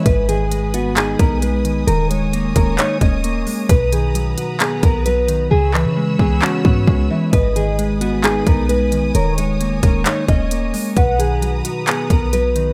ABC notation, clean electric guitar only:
X:1
M:4/4
L:1/8
Q:1/4=132
K:G#m
V:1 name="Clean electric guitar" clef=bass
G,, D, G, B, D B, G, D, | D, G, A, C D C A, G, | B,, D, F,2 B,2 F, D, | C, E, G, B, C B, G, E, |
G,, D, G, B, D B, G, D, | D, G, A, C D C A, G, | B,, D, F,2 B,2 F, D, |]